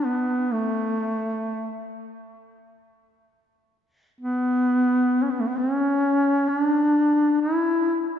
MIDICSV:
0, 0, Header, 1, 2, 480
1, 0, Start_track
1, 0, Key_signature, 2, "minor"
1, 0, Tempo, 920245
1, 26, Time_signature, 4, 2, 24, 8
1, 4273, End_track
2, 0, Start_track
2, 0, Title_t, "Duduk"
2, 0, Program_c, 0, 69
2, 28, Note_on_c, 0, 59, 70
2, 278, Note_on_c, 0, 57, 69
2, 286, Note_off_c, 0, 59, 0
2, 999, Note_off_c, 0, 57, 0
2, 2193, Note_on_c, 0, 59, 82
2, 2724, Note_on_c, 0, 61, 47
2, 2732, Note_off_c, 0, 59, 0
2, 2768, Note_on_c, 0, 59, 54
2, 2775, Note_off_c, 0, 61, 0
2, 2818, Note_on_c, 0, 57, 58
2, 2825, Note_off_c, 0, 59, 0
2, 2860, Note_on_c, 0, 59, 52
2, 2867, Note_off_c, 0, 57, 0
2, 2910, Note_on_c, 0, 61, 79
2, 2918, Note_off_c, 0, 59, 0
2, 3385, Note_on_c, 0, 62, 78
2, 3393, Note_off_c, 0, 61, 0
2, 3861, Note_off_c, 0, 62, 0
2, 3864, Note_on_c, 0, 64, 76
2, 4188, Note_off_c, 0, 64, 0
2, 4273, End_track
0, 0, End_of_file